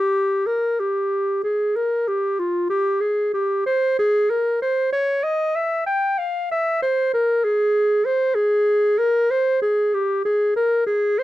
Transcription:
clarinet
Already playing: G4
0.47 A#4
0.80 G4
1.44 G#4
1.76 A#4
2.08 G4
2.39 F4
2.70 G4
3.01 G#4
3.34 G4
3.66 C5
3.99 G#4
4.30 A#4
4.62 C5
4.92 C#5
5.24 D#5
5.55 E5
5.87 G5
6.18 F5
6.52 E5
6.83 C5
7.14 A#4
7.44 G#4
8.06 C5
8.35 G#4
8.99 A#4
9.31 C5
9.62 G#4
9.94 G4
10.25 G#4
10.56 A#4
10.87 G#4
11.19 C5

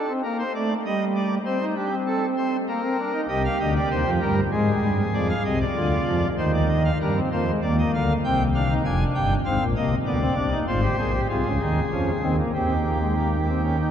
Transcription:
pipe organ
Already playing: A4
0.08 C4
0.24 A#3 A#4
0.39 C5
0.55 A3 D5
0.85 G3 D#5
1.16 D5
1.45 C4 C5
1.61 D#4
1.76 D4 G4
1.91 C4
2.07 A4
2.37 C5
2.68 A#3 A#4
2.84 C4
2.99 D4
3.14 D#4
3.29 C2 C3 G4 D#5
3.45 F5
3.60 D2 D3 D#5
3.75 D5
3.90 D#2 D#3 C5
4.06 F2 F3
4.21 G2 G3 A#4
4.52 G#2 G#3 G#4
4.83 G2 G3
5.13 F2 F3 D5
5.29 F5
5.44 C2 C3 D#5
5.60 D5
5.75 D2 D3 F4
6.06 F2 F3
6.37 D#2 D#3 D#4 C5
6.54 D5
6.69 D#5
6.85 F5
7.00 G2 G3 D4 A#4
7.16 C4
7.32 F2 F3 A#3 C5
7.47 G#3
7.62 D#2 D#3 A#3 D5
7.79 D#5
7.94 D2 D3 F5
8.24 C2 C3 C4 G5
8.55 D4 F5
8.69 D#4
8.85 F1 F2 D4 G#5
9.15 G1 G2 G5
9.45 G#1 G#2 C4 F5
9.60 A#1 A#2
9.76 C2 C3 A#3 D#5
10.06 D2 D3 B3 D5
10.21 C4
10.36 C2 C3 D4
10.51 D#4
10.67 G#1 G#2 F4 C5
10.83 G4
10.99 A#1 A#2 G#4
11.14 G4
11.29 C2 C3 F4 G#4
11.45 C#2 C#3
11.61 D#2 D#3 D#4
11.92 F2 F3 C#4
12.22 D#2 D#3 C4
12.38 A#3
12.54 D#2 D#3 C4 G4
12.85 A#3
13.01 G#3
13.17 A#3
13.47 C4
13.63 C#4
13.79 D#4

